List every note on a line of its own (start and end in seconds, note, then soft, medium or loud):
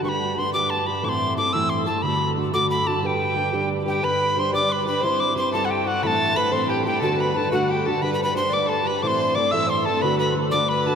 0.03 4.03 G2 medium
0.03 0.35 G3 medium
0.03 0.36 D4 medium
0.03 0.38 G4 medium
0.03 0.38 B4 medium
0.03 0.10 C#6 medium
0.09 0.40 B5 medium
0.37 0.54 G3 soft
0.37 0.54 D4 medium
0.37 0.53 G4 medium
0.37 0.53 B4 medium
0.37 0.53 C6 medium
0.54 0.88 G3 soft
0.54 0.88 D4 medium
0.54 0.87 G4 medium
0.54 0.86 B4 medium
0.54 0.71 D6 medium
0.70 0.88 A5 medium
0.87 1.03 D4 soft
0.87 1.03 G4 soft
0.87 1.04 B4 soft
0.87 1.06 B5 medium
1.03 1.37 A2 medium
1.03 1.37 E3 medium
1.03 1.35 A3 medium
1.03 1.36 C4 medium
1.03 1.37 E4 medium
1.03 1.37 A4 medium
1.03 1.10 D6 medium
1.09 1.37 C6 loud
1.36 1.53 A3 medium
1.36 1.53 C4 medium
1.36 1.53 E4 medium
1.36 1.53 A4 medium
1.36 1.54 D6 medium
1.53 1.88 A2 soft
1.53 1.88 E3 medium
1.53 1.88 A3 medium
1.53 1.87 C4 medium
1.53 1.87 E4 medium
1.53 1.85 A4 medium
1.53 1.71 E6 loud
1.70 1.85 C6 medium
1.86 2.02 A3 soft
1.86 2.04 C4 soft
1.86 2.04 E4 soft
1.86 2.03 A4 soft
1.86 2.04 A5 medium
2.02 2.55 D3 medium
2.02 2.35 A3 medium
2.02 2.37 D4 medium
2.02 2.37 F#4 medium
2.02 2.37 A4 medium
2.02 2.31 B5 loud
2.36 2.53 A3 medium
2.36 2.53 D4 medium
2.36 2.53 F#4 medium
2.36 2.52 A4 medium
2.54 5.07 D3 medium
2.54 2.87 A3 medium
2.54 2.88 D4 medium
2.54 2.87 F#4 medium
2.54 2.85 A4 medium
2.54 2.69 D6 medium
2.70 2.89 B5 medium
2.87 3.02 D4 soft
2.87 3.03 F#4 soft
2.87 3.03 A4 medium
2.87 3.03 A5 medium
3.03 3.35 G3 medium
3.03 3.36 D4 medium
3.03 3.37 G4 medium
3.03 3.37 B4 medium
3.03 3.70 G5 medium
3.03 3.07 A5 medium
3.36 3.53 G3 soft
3.36 3.53 D4 medium
3.36 3.52 G4 medium
3.36 3.52 B4 medium
3.53 4.02 G3 medium
3.53 3.87 D4 medium
3.53 3.87 G4 medium
3.53 3.84 B4 medium
3.86 4.02 D4 soft
3.86 4.05 G4 medium
3.86 4.02 G4 soft
3.86 4.03 B4 medium
3.86 4.06 G5 medium
4.03 8.02 G2 medium
4.03 4.35 G3 medium
4.03 4.36 D4 medium
4.03 4.36 G4 medium
4.03 4.36 B4 medium
4.03 4.37 B4 medium
4.03 4.41 B5 medium
4.36 4.53 G3 medium
4.36 4.53 D4 medium
4.36 4.52 G4 medium
4.36 4.51 B4 medium
4.36 4.54 C5 medium
4.36 4.53 C6 medium
4.52 4.87 G3 medium
4.52 4.87 D4 medium
4.52 4.85 G4 medium
4.52 4.84 B4 medium
4.52 4.70 D5 medium
4.52 4.74 D6 medium
4.69 4.83 B4 medium
4.69 4.87 B5 medium
4.84 5.03 G4 soft
4.84 5.01 B4 medium
4.84 5.02 B4 soft
4.84 5.05 B5 medium
4.89 5.03 D4 soft
5.00 5.34 G3 medium
5.00 5.34 C5 medium
5.00 5.21 C6 loud
5.04 5.35 C4 medium
5.04 5.35 E4 medium
5.04 5.36 C5 medium
5.20 5.36 D6 medium
5.35 5.52 G3 medium
5.35 5.53 C4 medium
5.35 5.53 E4 medium
5.35 5.54 C5 medium
5.35 5.52 C5 medium
5.35 5.52 C6 medium
5.52 5.87 G3 medium
5.52 5.86 C4 medium
5.52 5.85 E4 medium
5.52 5.69 A4 medium
5.52 5.84 C5 medium
5.52 5.67 A5 medium
5.65 5.87 G4 medium
5.65 5.72 F#5 medium
5.71 5.89 G5 medium
5.85 6.03 C4 soft
5.85 6.03 E4 soft
5.85 6.03 F#4 medium
5.85 6.02 C5 soft
5.85 6.05 F#5 medium
6.02 6.36 A2 medium
6.02 6.36 E3 medium
6.02 6.33 A3 medium
6.02 6.35 C4 medium
6.02 6.36 E4 medium
6.02 6.34 A4 medium
6.02 6.36 A4 medium
6.02 6.08 B5 medium
6.07 6.38 A5 medium
6.35 6.51 A3 medium
6.35 6.51 C4 medium
6.35 6.51 E4 medium
6.35 6.50 A4 medium
6.35 6.53 B4 medium
6.35 6.54 B5 medium
6.51 6.86 A2 medium
6.51 6.86 E3 medium
6.51 6.86 A3 medium
6.51 6.86 C4 medium
6.51 6.85 E4 medium
6.51 6.84 A4 medium
6.51 6.67 C5 medium
6.51 6.71 C6 medium
6.68 6.84 G4 medium
6.68 6.85 G5 medium
6.84 7.01 A3 soft
6.84 7.03 C4 soft
6.84 7.02 E4 soft
6.84 7.02 G4 medium
6.84 7.02 A4 medium
6.84 7.01 G5 medium
7.00 7.35 D3 medium
7.00 7.34 A3 medium
7.00 7.34 D4 medium
7.00 7.35 F#4 medium
7.00 7.16 A4 medium
7.00 7.36 A4 medium
7.00 7.22 A5 medium
7.17 7.53 B4 medium
7.17 7.38 B5 medium
7.35 7.52 A3 medium
7.35 7.52 D4 medium
7.35 7.52 F#4 medium
7.35 7.50 A4 medium
7.35 7.51 A5 medium
7.52 7.86 D3 soft
7.52 7.86 A3 medium
7.52 7.86 D4 medium
7.52 7.70 F#4 medium
7.52 7.86 F#4 medium
7.52 7.84 A4 medium
7.52 7.72 F#5 medium
7.68 7.87 G4 medium
7.68 7.88 G5 medium
7.85 8.02 D4 soft
7.85 8.03 F#4 soft
7.85 8.02 A4 medium
7.85 8.02 A4 soft
7.85 8.03 A5 medium
8.02 10.95 G2 medium
8.02 8.34 G3 medium
8.02 8.35 D4 medium
8.02 8.35 G4 medium
8.02 8.13 B4 medium
8.02 8.36 B4 medium
8.02 8.13 B5 loud
8.14 8.23 B5 medium
8.23 8.34 B4 medium
8.23 8.34 B5 medium
8.34 8.52 G3 medium
8.34 8.52 D4 medium
8.34 8.52 G4 medium
8.34 8.51 B4 medium
8.34 8.51 C5 medium
8.34 8.55 C6 medium
8.50 8.86 D4 medium
8.50 8.86 G4 medium
8.50 8.84 B4 medium
8.50 8.67 D5 medium
8.50 8.71 D6 medium
8.54 8.86 G3 medium
8.66 8.83 A4 medium
8.66 8.89 A5 medium
8.84 9.03 D4 soft
8.84 9.03 G4 soft
8.84 9.00 B4 medium
8.84 9.02 B4 soft
8.84 9.04 B5 medium
9.01 9.36 A2 medium
9.01 9.36 E3 medium
9.01 9.35 A3 medium
9.01 9.36 C4 medium
9.01 9.36 E4 medium
9.01 9.36 A4 medium
9.01 9.36 C5 medium
9.01 9.08 D6 medium
9.07 9.37 C6 loud
9.35 9.52 A3 medium
9.35 9.53 C4 medium
9.35 9.53 E4 medium
9.35 9.52 A4 medium
9.35 9.53 D5 medium
9.35 9.53 D6 medium
9.51 9.87 E3 medium
9.51 9.86 A3 medium
9.51 9.86 C4 medium
9.51 9.86 E4 medium
9.51 9.86 A4 medium
9.51 9.68 E5 medium
9.51 9.71 E6 loud
9.56 9.87 A2 soft
9.67 9.83 C5 medium
9.67 9.87 C6 medium
9.83 10.02 A4 medium
9.83 10.03 A5 medium
9.87 10.02 A3 soft
9.87 10.03 C4 soft
9.87 10.03 E4 soft
9.87 10.03 A4 soft
10.01 10.54 D3 medium
10.01 10.34 A3 medium
10.01 10.36 D4 medium
10.01 10.36 F#4 medium
10.01 10.36 A4 medium
10.01 10.18 B4 medium
10.01 10.18 B5 loud
10.18 10.34 B4 medium
10.18 10.34 B5 medium
10.35 10.52 A3 medium
10.35 10.52 D4 medium
10.35 10.52 F#4 medium
10.35 10.51 A4 medium
10.51 10.95 D3 medium
10.51 10.86 A3 medium
10.51 10.88 D4 medium
10.51 10.86 F#4 medium
10.51 10.85 A4 medium
10.51 10.67 D5 medium
10.51 10.70 D6 medium
10.68 10.95 B4 medium
10.68 10.88 B5 medium
10.86 10.95 D4 soft
10.86 10.95 F#4 soft
10.86 10.95 A4 medium
10.86 10.95 A5 medium